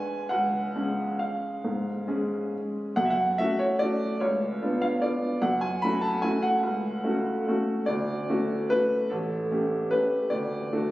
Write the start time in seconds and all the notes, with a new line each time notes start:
Already playing: G#3 D4 B4 G#5
0.29 C#2 F#5
0.75 G#3 C#4 G#4
1.19 F5
1.64 G#2
2.08 G#3 C#4 G#4
2.96 F#2 F#5
3.05 E5
3.10 F#5
3.38 A3 C#4 F#4 E5
3.59 C#5
3.79 A3 C#4 F#4 D5
4.20 C#2 C#5
4.62 B3 D4 F4
4.82 F5
5.02 B3 D4 F4 D5
5.42 F#2 F#5
5.61 G#5
5.82 A3 C#4 F#4 B5
6.01 A5
6.22 A3 C#4 F#4 G#5
6.43 F#5
6.63 C#2
7.04 A3 C#4 F#4
7.48 A3 C#4 F#4
7.86 D2 D5
8.29 A3 C#4 F#4
8.70 A3 C#4 F#4 B4
9.10 A1 A4
9.51 A3 C#4 G4
9.91 A3 C#4 G4 B4
10.30 D2 D5
10.73 A3 D4 F#4